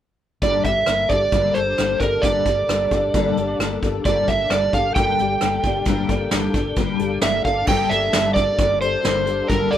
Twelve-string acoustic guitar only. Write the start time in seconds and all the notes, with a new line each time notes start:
0.42 G2 D3 G3 A#3 D4 A4
0.65 G3 A#3 D4 A4
0.86 G3 A#3 D4 A4
1.09 G3 A#3 D4 A4
1.32 G2 D3 G3 A#3 D4 A4
1.54 G3 A#3 D4 A4
1.78 G3 A#3 D4 A4
2.00 G3 A#3 D4 A4
2.22 G2 D3 G3 A#3 D4 A4
2.46 G3 A#3 D4 A4
2.68 G3 A#3 D4 A4
2.91 G3 A#3 D4 A4
3.14 G2 D3 G3 A#3 D4 A4
3.37 G3 A#3 D4 A4
3.60 G3 A#3 D4 A4
3.82 G3 A#3 D4 A4
4.06 G2 D3 G3 A#3 D4 A4
4.28 G3 A#3 D4 A4
4.50 G3 A#3 D4 A4
4.74 G3 A#3 D4 A4
4.96 G2 D3 G3 A#3 D4 A4
5.18 G3 A#3 D4 A4
5.41 G3 A#3 D4 A4
5.64 G3 A#3 D4 A4
5.87 G2 D3 G3 A#3 D4 A4
6.08 G3 A#3 D4 A4
6.32 G3 A#3 D4 A4
6.54 G3 A#3 D4 A4
6.77 G2 D3 G3 A#3 D4 A4
6.99 G3 A#3 D4 A4
7.21 G3 A#3 D4 A4
7.44 G3 A#3 D4 A4
7.68 G2 D3 G3 A#3 D4 A4
7.91 G3 A#3 D4 A4
8.12 G2 D3 G3 A#3 D4 A4
8.35 G3 A#3 D4 A4
8.58 G3 A#3 D4 A4
8.80 G3 A#3 D4 A4
9.03 G2 D3 G3 A#3 D4 A4
9.25 G3 A#3 D4 A4
9.48 G2 D3 G3 A#3 D4 A4
9.71 G3 A#3 D4 A4